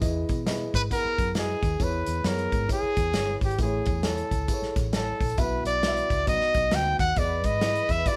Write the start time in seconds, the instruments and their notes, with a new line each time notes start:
0.01 fingered electric bass E2, upright piano E3 E4 G#4 B4 D#5, kick, closed hi-hat, tambourine
0.29 fingered electric bass B2, kick, closed hi-hat, tambourine
0.46 upright piano E4 G#4 B4 D#5, snare, closed hi-hat, tambourine
0.74 fingered electric bass G#2, trumpet B4, kick, closed hi-hat, tambourine
0.90 upright piano B3 E4 G#4 F#5, trumpet A#4, kick, closed hi-hat, tambourine
1.05 muted fingered electric bass stroke
1.18 fingered electric bass F#2, kick, closed hi-hat, tambourine
1.35 upright piano E4 F#4 B4 D#5, snare, closed hi-hat, tambourine
1.39 trumpet G#4, upright piano G#4
1.63 fingered electric bass D#2, kick, closed hi-hat, tambourine
1.79 fingered electric bass E2, upright piano E3 E4 G#4 B4 C#5, trumpet B4, kick, closed hi-hat, tambourine
2.06 fingered electric bass E2, closed hi-hat, tambourine
2.24 fingered electric bass F#2, upright piano B3 E4 G#4 C#5, trumpet A#4, snare, closed hi-hat, tambourine
2.38 closed hi-hat
2.52 fingered electric bass G#2, kick, closed hi-hat, tambourine
2.68 upright piano E4 G#4 B4 C#5, kick, closed hi-hat, tambourine
2.73 trumpet G#4
2.83 muted fingered electric bass stroke
2.96 fingered electric bass E2, kick, closed hi-hat, tambourine
3.13 fingered electric bass G1, upright piano E4 G#4 B4 C#5, snare, closed hi-hat, tambourine
3.41 fingered electric bass G#1, trumpet G4, kick, open hi-hat, tambourine
3.51 closed hi-hat
3.58 fingered electric bass A1, upright piano A2 A3 E4 G#4 B4, trumpet G#4, kick, closed hi-hat, tambourine
3.64 upright piano C#5
3.86 fingered electric bass E2, kick, closed hi-hat, tambourine
4.03 upright piano E4 A4 C#5 G#5, trumpet A4, snare, closed hi-hat, tambourine
4.18 closed hi-hat
4.31 fingered electric bass C#2, kick, closed hi-hat, tambourine
4.48 upright piano E4 G#4 A4 B4, kick, closed hi-hat, tambourine
4.53 upright piano C#5
4.62 muted fingered electric bass stroke, snare
4.76 fingered electric bass A1, kick, snare, closed hi-hat, tambourine
4.92 upright piano E4 A4 C#5 G#5, trumpet A4, snare, closed hi-hat, tambourine
5.20 fingered electric bass A#1, kick, open hi-hat, tambourine
5.30 closed hi-hat
5.37 fingered electric bass B1, upright piano B2 E4 F#4 B4 E5, trumpet B4, kick, closed hi-hat, tambourine
5.65 fingered electric bass B1, trumpet D5, closed hi-hat, tambourine
5.82 upright piano E4 F#4 B4 D#5, snare, closed hi-hat, tambourine
5.88 upright piano E5
5.97 closed hi-hat
6.10 fingered electric bass C#2, kick, closed hi-hat, tambourine
6.26 fingered electric bass B1, upright piano B2 D#4 F#4 B4 D#5, trumpet D#5, kick, closed hi-hat, tambourine
6.41 muted fingered electric bass stroke, snare
6.55 fingered electric bass B1, kick, closed hi-hat, tambourine
6.71 fingered electric bass D2, upright piano D#4 F#4 B4 D#5, trumpet G5, snare, closed hi-hat, tambourine
6.99 fingered electric bass D#2, trumpet F#5, kick, closed hi-hat, tambourine
7.16 fingered electric bass E2, upright piano E3 E4 G#4 B4 D#5, string section B4 B5, trumpet D5, kick, closed hi-hat, tambourine
7.44 fingered electric bass G#2, trumpet D#5, kick, closed hi-hat, tambourine
7.61 upright piano E4 G#4 B4 D5, snare, closed hi-hat, tambourine
7.67 upright piano D#5
7.75 closed hi-hat
7.88 fingered electric bass E2, trumpet E5, kick, closed hi-hat, tambourine
8.06 upright piano E4 F#4 B4 E5, trumpet D5, kick, closed hi-hat, tambourine
8.12 upright piano G#4